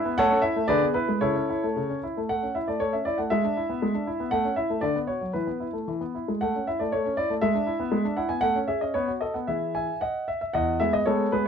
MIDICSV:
0, 0, Header, 1, 2, 480
1, 0, Start_track
1, 0, Key_signature, 3, "major"
1, 0, Tempo, 503356
1, 167, Time_signature, 2, 2, 24, 8
1, 649, Tempo, 531915
1, 2569, Tempo, 501672
1, 4489, Tempo, 529101
1, 6409, Tempo, 504626
1, 7840, Key_signature, 4, "major"
1, 8329, Tempo, 527241
1, 10631, End_track
2, 0, Start_track
2, 0, Title_t, "Grand piano"
2, 0, Program_c, 0, 0
2, 0, Note_on_c, 0, 68, 74
2, 0, Note_on_c, 0, 71, 73
2, 0, Note_on_c, 0, 76, 97
2, 51, Note_on_c, 0, 59, 58
2, 119, Note_off_c, 0, 76, 0
2, 125, Note_off_c, 0, 68, 0
2, 125, Note_off_c, 0, 71, 0
2, 168, Note_off_c, 0, 59, 0
2, 169, Note_on_c, 0, 78, 113
2, 177, Note_on_c, 0, 57, 78
2, 177, Note_on_c, 0, 73, 89
2, 179, Note_on_c, 0, 69, 89
2, 287, Note_off_c, 0, 57, 0
2, 289, Note_on_c, 0, 61, 58
2, 383, Note_off_c, 0, 78, 0
2, 395, Note_off_c, 0, 73, 0
2, 396, Note_off_c, 0, 69, 0
2, 397, Note_on_c, 0, 76, 82
2, 407, Note_on_c, 0, 64, 58
2, 413, Note_off_c, 0, 61, 0
2, 533, Note_off_c, 0, 64, 0
2, 536, Note_on_c, 0, 57, 59
2, 645, Note_off_c, 0, 76, 0
2, 645, Note_on_c, 0, 74, 93
2, 654, Note_off_c, 0, 57, 0
2, 655, Note_on_c, 0, 50, 79
2, 655, Note_on_c, 0, 71, 71
2, 656, Note_on_c, 0, 68, 73
2, 766, Note_off_c, 0, 50, 0
2, 775, Note_on_c, 0, 59, 56
2, 789, Note_off_c, 0, 74, 0
2, 872, Note_off_c, 0, 71, 0
2, 873, Note_off_c, 0, 68, 0
2, 886, Note_on_c, 0, 71, 79
2, 894, Note_on_c, 0, 64, 53
2, 897, Note_off_c, 0, 59, 0
2, 1014, Note_on_c, 0, 56, 47
2, 1017, Note_off_c, 0, 64, 0
2, 1106, Note_off_c, 0, 71, 0
2, 1126, Note_on_c, 0, 73, 80
2, 1132, Note_on_c, 0, 49, 65
2, 1133, Note_on_c, 0, 69, 54
2, 1134, Note_off_c, 0, 56, 0
2, 1135, Note_on_c, 0, 64, 62
2, 1250, Note_off_c, 0, 49, 0
2, 1262, Note_on_c, 0, 61, 49
2, 1375, Note_off_c, 0, 64, 0
2, 1385, Note_off_c, 0, 61, 0
2, 1389, Note_on_c, 0, 64, 48
2, 1509, Note_off_c, 0, 64, 0
2, 1510, Note_on_c, 0, 57, 47
2, 1625, Note_on_c, 0, 49, 57
2, 1630, Note_off_c, 0, 57, 0
2, 1739, Note_off_c, 0, 49, 0
2, 1747, Note_on_c, 0, 61, 46
2, 1823, Note_off_c, 0, 73, 0
2, 1827, Note_off_c, 0, 69, 0
2, 1870, Note_on_c, 0, 64, 50
2, 1872, Note_off_c, 0, 61, 0
2, 1994, Note_off_c, 0, 64, 0
2, 1995, Note_on_c, 0, 57, 47
2, 2098, Note_off_c, 0, 57, 0
2, 2104, Note_on_c, 0, 78, 77
2, 2111, Note_on_c, 0, 57, 53
2, 2222, Note_off_c, 0, 57, 0
2, 2224, Note_on_c, 0, 61, 38
2, 2334, Note_on_c, 0, 76, 53
2, 2339, Note_off_c, 0, 78, 0
2, 2342, Note_on_c, 0, 64, 41
2, 2346, Note_off_c, 0, 61, 0
2, 2450, Note_on_c, 0, 74, 55
2, 2453, Note_off_c, 0, 76, 0
2, 2457, Note_on_c, 0, 57, 43
2, 2462, Note_off_c, 0, 64, 0
2, 2552, Note_off_c, 0, 57, 0
2, 2561, Note_on_c, 0, 73, 76
2, 2565, Note_on_c, 0, 57, 49
2, 2567, Note_off_c, 0, 74, 0
2, 2684, Note_off_c, 0, 57, 0
2, 2684, Note_on_c, 0, 76, 54
2, 2686, Note_off_c, 0, 73, 0
2, 2690, Note_on_c, 0, 61, 42
2, 2802, Note_on_c, 0, 74, 69
2, 2807, Note_off_c, 0, 76, 0
2, 2815, Note_on_c, 0, 64, 45
2, 2816, Note_off_c, 0, 61, 0
2, 2923, Note_on_c, 0, 78, 55
2, 2926, Note_off_c, 0, 74, 0
2, 2932, Note_on_c, 0, 57, 41
2, 2938, Note_off_c, 0, 64, 0
2, 3042, Note_on_c, 0, 76, 80
2, 3046, Note_off_c, 0, 78, 0
2, 3051, Note_off_c, 0, 57, 0
2, 3054, Note_on_c, 0, 56, 59
2, 3169, Note_off_c, 0, 56, 0
2, 3177, Note_on_c, 0, 62, 50
2, 3297, Note_on_c, 0, 64, 47
2, 3300, Note_off_c, 0, 62, 0
2, 3418, Note_on_c, 0, 59, 48
2, 3419, Note_off_c, 0, 64, 0
2, 3539, Note_off_c, 0, 59, 0
2, 3540, Note_on_c, 0, 56, 54
2, 3650, Note_off_c, 0, 56, 0
2, 3656, Note_on_c, 0, 62, 45
2, 3777, Note_off_c, 0, 62, 0
2, 3778, Note_on_c, 0, 64, 53
2, 3898, Note_off_c, 0, 64, 0
2, 3901, Note_on_c, 0, 59, 49
2, 4002, Note_off_c, 0, 76, 0
2, 4006, Note_on_c, 0, 78, 88
2, 4013, Note_off_c, 0, 59, 0
2, 4015, Note_on_c, 0, 57, 65
2, 4127, Note_off_c, 0, 57, 0
2, 4137, Note_on_c, 0, 61, 49
2, 4222, Note_off_c, 0, 78, 0
2, 4247, Note_on_c, 0, 76, 64
2, 4256, Note_on_c, 0, 64, 48
2, 4258, Note_off_c, 0, 61, 0
2, 4378, Note_off_c, 0, 64, 0
2, 4380, Note_on_c, 0, 57, 48
2, 4486, Note_on_c, 0, 74, 73
2, 4490, Note_off_c, 0, 76, 0
2, 4495, Note_off_c, 0, 57, 0
2, 4497, Note_on_c, 0, 50, 58
2, 4607, Note_off_c, 0, 50, 0
2, 4620, Note_on_c, 0, 59, 42
2, 4628, Note_off_c, 0, 74, 0
2, 4724, Note_on_c, 0, 73, 65
2, 4732, Note_on_c, 0, 66, 41
2, 4737, Note_off_c, 0, 59, 0
2, 4850, Note_on_c, 0, 54, 38
2, 4854, Note_off_c, 0, 66, 0
2, 4940, Note_off_c, 0, 73, 0
2, 4959, Note_on_c, 0, 71, 57
2, 4968, Note_off_c, 0, 54, 0
2, 4968, Note_on_c, 0, 52, 50
2, 5084, Note_off_c, 0, 52, 0
2, 5085, Note_on_c, 0, 59, 39
2, 5202, Note_on_c, 0, 64, 37
2, 5213, Note_off_c, 0, 59, 0
2, 5252, Note_off_c, 0, 71, 0
2, 5321, Note_on_c, 0, 57, 38
2, 5332, Note_off_c, 0, 64, 0
2, 5447, Note_off_c, 0, 57, 0
2, 5453, Note_on_c, 0, 52, 49
2, 5571, Note_off_c, 0, 52, 0
2, 5572, Note_on_c, 0, 59, 39
2, 5698, Note_on_c, 0, 64, 40
2, 5702, Note_off_c, 0, 59, 0
2, 5822, Note_on_c, 0, 56, 39
2, 5826, Note_off_c, 0, 64, 0
2, 5935, Note_on_c, 0, 78, 75
2, 5941, Note_off_c, 0, 56, 0
2, 5944, Note_on_c, 0, 57, 54
2, 6057, Note_off_c, 0, 57, 0
2, 6068, Note_on_c, 0, 61, 41
2, 6174, Note_off_c, 0, 78, 0
2, 6175, Note_on_c, 0, 76, 60
2, 6186, Note_on_c, 0, 64, 44
2, 6187, Note_off_c, 0, 61, 0
2, 6285, Note_on_c, 0, 74, 55
2, 6293, Note_off_c, 0, 76, 0
2, 6293, Note_on_c, 0, 57, 44
2, 6304, Note_off_c, 0, 64, 0
2, 6397, Note_off_c, 0, 57, 0
2, 6401, Note_on_c, 0, 73, 72
2, 6405, Note_off_c, 0, 74, 0
2, 6411, Note_on_c, 0, 57, 51
2, 6527, Note_off_c, 0, 57, 0
2, 6527, Note_on_c, 0, 61, 47
2, 6621, Note_off_c, 0, 73, 0
2, 6637, Note_on_c, 0, 74, 75
2, 6646, Note_on_c, 0, 64, 47
2, 6654, Note_off_c, 0, 61, 0
2, 6761, Note_on_c, 0, 57, 44
2, 6773, Note_off_c, 0, 64, 0
2, 6783, Note_off_c, 0, 74, 0
2, 6869, Note_on_c, 0, 76, 80
2, 6877, Note_on_c, 0, 56, 63
2, 6883, Note_off_c, 0, 57, 0
2, 6994, Note_on_c, 0, 62, 50
2, 6997, Note_off_c, 0, 56, 0
2, 7108, Note_on_c, 0, 64, 51
2, 7124, Note_off_c, 0, 62, 0
2, 7232, Note_on_c, 0, 59, 52
2, 7240, Note_off_c, 0, 64, 0
2, 7346, Note_on_c, 0, 56, 60
2, 7361, Note_off_c, 0, 59, 0
2, 7468, Note_off_c, 0, 56, 0
2, 7471, Note_on_c, 0, 62, 52
2, 7583, Note_on_c, 0, 78, 65
2, 7589, Note_on_c, 0, 64, 57
2, 7590, Note_off_c, 0, 76, 0
2, 7601, Note_off_c, 0, 62, 0
2, 7700, Note_on_c, 0, 80, 68
2, 7710, Note_on_c, 0, 59, 48
2, 7711, Note_off_c, 0, 78, 0
2, 7720, Note_off_c, 0, 64, 0
2, 7814, Note_on_c, 0, 78, 97
2, 7826, Note_on_c, 0, 57, 62
2, 7831, Note_off_c, 0, 80, 0
2, 7836, Note_off_c, 0, 59, 0
2, 7951, Note_off_c, 0, 57, 0
2, 7952, Note_on_c, 0, 61, 50
2, 7968, Note_off_c, 0, 78, 0
2, 8068, Note_on_c, 0, 76, 67
2, 8077, Note_on_c, 0, 68, 51
2, 8085, Note_off_c, 0, 61, 0
2, 8198, Note_off_c, 0, 76, 0
2, 8198, Note_on_c, 0, 75, 55
2, 8205, Note_on_c, 0, 61, 48
2, 8209, Note_off_c, 0, 68, 0
2, 8320, Note_on_c, 0, 73, 76
2, 8325, Note_off_c, 0, 75, 0
2, 8328, Note_off_c, 0, 61, 0
2, 8329, Note_on_c, 0, 59, 59
2, 8444, Note_off_c, 0, 59, 0
2, 8447, Note_on_c, 0, 66, 45
2, 8467, Note_off_c, 0, 73, 0
2, 8562, Note_on_c, 0, 75, 57
2, 8572, Note_on_c, 0, 69, 45
2, 8574, Note_off_c, 0, 66, 0
2, 8685, Note_on_c, 0, 78, 50
2, 8688, Note_off_c, 0, 75, 0
2, 8696, Note_on_c, 0, 59, 37
2, 8699, Note_off_c, 0, 69, 0
2, 8807, Note_on_c, 0, 76, 61
2, 8812, Note_off_c, 0, 78, 0
2, 8814, Note_on_c, 0, 52, 42
2, 8814, Note_on_c, 0, 68, 38
2, 8817, Note_off_c, 0, 59, 0
2, 8817, Note_on_c, 0, 64, 37
2, 9052, Note_off_c, 0, 76, 0
2, 9055, Note_on_c, 0, 80, 64
2, 9066, Note_on_c, 0, 76, 49
2, 9158, Note_off_c, 0, 52, 0
2, 9207, Note_off_c, 0, 68, 0
2, 9209, Note_off_c, 0, 64, 0
2, 9291, Note_off_c, 0, 76, 0
2, 9294, Note_on_c, 0, 78, 68
2, 9302, Note_off_c, 0, 80, 0
2, 9303, Note_on_c, 0, 75, 49
2, 9531, Note_off_c, 0, 75, 0
2, 9539, Note_on_c, 0, 76, 61
2, 9543, Note_off_c, 0, 78, 0
2, 9647, Note_off_c, 0, 76, 0
2, 9661, Note_on_c, 0, 76, 58
2, 9772, Note_on_c, 0, 78, 81
2, 9782, Note_on_c, 0, 40, 63
2, 9782, Note_on_c, 0, 75, 66
2, 9784, Note_off_c, 0, 76, 0
2, 10004, Note_off_c, 0, 75, 0
2, 10010, Note_on_c, 0, 76, 80
2, 10013, Note_off_c, 0, 40, 0
2, 10015, Note_off_c, 0, 78, 0
2, 10019, Note_on_c, 0, 56, 44
2, 10023, Note_on_c, 0, 59, 44
2, 10027, Note_on_c, 0, 68, 49
2, 10134, Note_on_c, 0, 75, 82
2, 10135, Note_off_c, 0, 76, 0
2, 10190, Note_off_c, 0, 56, 0
2, 10193, Note_off_c, 0, 59, 0
2, 10195, Note_off_c, 0, 68, 0
2, 10246, Note_on_c, 0, 73, 78
2, 10255, Note_off_c, 0, 75, 0
2, 10258, Note_on_c, 0, 56, 49
2, 10258, Note_on_c, 0, 69, 64
2, 10262, Note_on_c, 0, 59, 49
2, 10264, Note_on_c, 0, 68, 53
2, 10427, Note_off_c, 0, 56, 0
2, 10429, Note_off_c, 0, 59, 0
2, 10431, Note_off_c, 0, 68, 0
2, 10476, Note_off_c, 0, 69, 0
2, 10487, Note_off_c, 0, 73, 0
2, 10489, Note_on_c, 0, 71, 73
2, 10497, Note_on_c, 0, 56, 48
2, 10498, Note_on_c, 0, 59, 44
2, 10503, Note_on_c, 0, 68, 51
2, 10608, Note_off_c, 0, 71, 0
2, 10631, Note_off_c, 0, 56, 0
2, 10631, Note_off_c, 0, 59, 0
2, 10631, Note_off_c, 0, 68, 0
2, 10631, End_track
0, 0, End_of_file